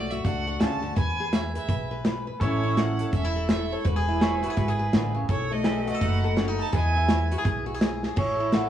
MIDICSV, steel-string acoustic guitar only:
0, 0, Header, 1, 2, 480
1, 0, Start_track
1, 0, Tempo, 360577
1, 1279, Time_signature, 4, 2, 24, 8
1, 11571, End_track
2, 0, Start_track
2, 0, Title_t, "Steel-string acoustic guitar"
2, 0, Program_c, 0, 25
2, 0, Note_on_c, 0, 54, 62
2, 0, Note_on_c, 0, 57, 56
2, 0, Note_on_c, 0, 66, 59
2, 154, Note_off_c, 0, 66, 0
2, 159, Note_on_c, 0, 66, 59
2, 284, Note_off_c, 0, 54, 0
2, 344, Note_on_c, 0, 45, 58
2, 354, Note_on_c, 0, 62, 59
2, 613, Note_off_c, 0, 66, 0
2, 629, Note_on_c, 0, 66, 66
2, 775, Note_off_c, 0, 45, 0
2, 810, Note_on_c, 0, 49, 68
2, 1092, Note_off_c, 0, 49, 0
2, 1098, Note_on_c, 0, 50, 56
2, 1275, Note_off_c, 0, 62, 0
2, 1281, Note_off_c, 0, 50, 0
2, 1281, Note_on_c, 0, 52, 74
2, 1282, Note_off_c, 0, 66, 0
2, 1284, Note_off_c, 0, 57, 0
2, 1287, Note_on_c, 0, 71, 69
2, 1596, Note_on_c, 0, 68, 53
2, 1723, Note_off_c, 0, 52, 0
2, 1768, Note_on_c, 0, 64, 53
2, 2055, Note_off_c, 0, 71, 0
2, 2071, Note_on_c, 0, 71, 50
2, 2207, Note_off_c, 0, 64, 0
2, 2238, Note_off_c, 0, 71, 0
2, 2243, Note_on_c, 0, 47, 56
2, 2254, Note_on_c, 0, 71, 69
2, 2524, Note_off_c, 0, 71, 0
2, 2540, Note_on_c, 0, 71, 62
2, 2684, Note_off_c, 0, 47, 0
2, 2716, Note_off_c, 0, 71, 0
2, 2720, Note_on_c, 0, 64, 61
2, 2732, Note_on_c, 0, 71, 65
2, 3005, Note_off_c, 0, 71, 0
2, 3021, Note_on_c, 0, 71, 50
2, 3163, Note_off_c, 0, 64, 0
2, 3181, Note_off_c, 0, 71, 0
2, 3188, Note_off_c, 0, 68, 0
2, 3215, Note_on_c, 0, 45, 73
2, 3223, Note_on_c, 0, 52, 62
2, 3236, Note_on_c, 0, 61, 62
2, 3245, Note_on_c, 0, 64, 55
2, 3251, Note_on_c, 0, 69, 64
2, 3492, Note_off_c, 0, 61, 0
2, 3508, Note_on_c, 0, 61, 51
2, 3651, Note_off_c, 0, 45, 0
2, 3689, Note_off_c, 0, 52, 0
2, 3694, Note_on_c, 0, 52, 58
2, 3986, Note_off_c, 0, 69, 0
2, 4002, Note_on_c, 0, 69, 52
2, 4130, Note_off_c, 0, 52, 0
2, 4158, Note_off_c, 0, 61, 0
2, 4172, Note_off_c, 0, 64, 0
2, 4172, Note_on_c, 0, 52, 50
2, 4178, Note_on_c, 0, 61, 47
2, 4321, Note_off_c, 0, 61, 0
2, 4321, Note_on_c, 0, 64, 52
2, 4455, Note_off_c, 0, 69, 0
2, 4471, Note_on_c, 0, 69, 61
2, 4611, Note_off_c, 0, 52, 0
2, 4641, Note_off_c, 0, 64, 0
2, 4650, Note_on_c, 0, 52, 63
2, 4661, Note_on_c, 0, 64, 53
2, 4943, Note_off_c, 0, 69, 0
2, 4962, Note_on_c, 0, 69, 56
2, 5089, Note_off_c, 0, 52, 0
2, 5106, Note_off_c, 0, 64, 0
2, 5111, Note_off_c, 0, 69, 0
2, 5119, Note_on_c, 0, 52, 77
2, 5128, Note_on_c, 0, 66, 57
2, 5271, Note_off_c, 0, 66, 0
2, 5271, Note_on_c, 0, 68, 58
2, 5434, Note_on_c, 0, 64, 54
2, 5563, Note_off_c, 0, 52, 0
2, 5608, Note_on_c, 0, 59, 55
2, 5887, Note_off_c, 0, 68, 0
2, 5892, Note_on_c, 0, 66, 57
2, 5989, Note_off_c, 0, 66, 0
2, 5989, Note_on_c, 0, 68, 55
2, 6047, Note_off_c, 0, 59, 0
2, 6076, Note_on_c, 0, 47, 65
2, 6081, Note_off_c, 0, 68, 0
2, 6086, Note_on_c, 0, 66, 63
2, 6231, Note_off_c, 0, 66, 0
2, 6231, Note_on_c, 0, 68, 55
2, 6363, Note_off_c, 0, 68, 0
2, 6379, Note_on_c, 0, 68, 60
2, 6521, Note_off_c, 0, 47, 0
2, 6566, Note_on_c, 0, 50, 65
2, 6845, Note_off_c, 0, 50, 0
2, 6850, Note_on_c, 0, 49, 49
2, 7019, Note_off_c, 0, 68, 0
2, 7027, Note_off_c, 0, 64, 0
2, 7034, Note_off_c, 0, 49, 0
2, 7040, Note_on_c, 0, 47, 70
2, 7053, Note_on_c, 0, 69, 68
2, 7342, Note_on_c, 0, 57, 55
2, 7482, Note_off_c, 0, 47, 0
2, 7524, Note_on_c, 0, 54, 56
2, 7808, Note_off_c, 0, 69, 0
2, 7813, Note_on_c, 0, 66, 60
2, 7908, Note_off_c, 0, 66, 0
2, 7908, Note_on_c, 0, 69, 53
2, 7964, Note_off_c, 0, 54, 0
2, 7995, Note_on_c, 0, 42, 61
2, 8007, Note_on_c, 0, 63, 50
2, 8285, Note_off_c, 0, 69, 0
2, 8301, Note_on_c, 0, 69, 63
2, 8442, Note_off_c, 0, 42, 0
2, 8469, Note_on_c, 0, 54, 57
2, 8473, Note_off_c, 0, 63, 0
2, 8479, Note_on_c, 0, 61, 55
2, 8620, Note_off_c, 0, 61, 0
2, 8620, Note_on_c, 0, 63, 51
2, 8753, Note_off_c, 0, 69, 0
2, 8769, Note_on_c, 0, 69, 60
2, 8918, Note_off_c, 0, 54, 0
2, 8934, Note_off_c, 0, 69, 0
2, 8952, Note_on_c, 0, 52, 71
2, 8954, Note_off_c, 0, 57, 0
2, 8955, Note_off_c, 0, 63, 0
2, 8959, Note_on_c, 0, 59, 54
2, 8973, Note_on_c, 0, 64, 61
2, 8978, Note_on_c, 0, 68, 62
2, 9260, Note_off_c, 0, 64, 0
2, 9276, Note_on_c, 0, 64, 51
2, 9398, Note_off_c, 0, 52, 0
2, 9439, Note_off_c, 0, 59, 0
2, 9453, Note_on_c, 0, 59, 56
2, 9737, Note_off_c, 0, 68, 0
2, 9742, Note_on_c, 0, 66, 60
2, 9827, Note_off_c, 0, 66, 0
2, 9827, Note_on_c, 0, 68, 49
2, 9888, Note_off_c, 0, 59, 0
2, 9908, Note_off_c, 0, 68, 0
2, 9911, Note_on_c, 0, 47, 68
2, 9924, Note_on_c, 0, 68, 66
2, 10192, Note_off_c, 0, 68, 0
2, 10198, Note_on_c, 0, 66, 62
2, 10306, Note_off_c, 0, 66, 0
2, 10306, Note_on_c, 0, 68, 51
2, 10357, Note_off_c, 0, 47, 0
2, 10385, Note_off_c, 0, 68, 0
2, 10395, Note_on_c, 0, 59, 65
2, 10401, Note_on_c, 0, 68, 60
2, 10687, Note_off_c, 0, 68, 0
2, 10703, Note_on_c, 0, 68, 59
2, 10839, Note_off_c, 0, 59, 0
2, 10860, Note_off_c, 0, 68, 0
2, 10864, Note_on_c, 0, 45, 71
2, 10867, Note_off_c, 0, 64, 0
2, 11183, Note_on_c, 0, 64, 49
2, 11313, Note_off_c, 0, 45, 0
2, 11348, Note_on_c, 0, 52, 61
2, 11359, Note_on_c, 0, 69, 53
2, 11571, Note_off_c, 0, 52, 0
2, 11571, Note_off_c, 0, 64, 0
2, 11571, Note_off_c, 0, 69, 0
2, 11571, End_track
0, 0, End_of_file